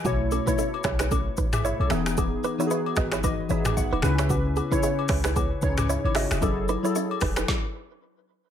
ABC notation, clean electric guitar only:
X:1
M:4/4
L:1/16
Q:"Swing 16ths" 1/4=113
K:Bmix
V:1 name="Clean electric guitar"
[A,F] z [CA] [DB] [CA] z [Ec] [DB] [CA] z [DB] z [Ec] z [Ge] z | [B,G] z [DB] [Ec] [DB] z [Fd] [Ec] [DB] z [Ec] z2 [DB] z [Ec] | [B,F] z [B,G] [DB] [B,G] z [Ec] [DB] [B,G] z [DB] z [Ec] z [Ge] z | [CA] z [DB] [Ec] [CA] z [DB] [DB] z8 |]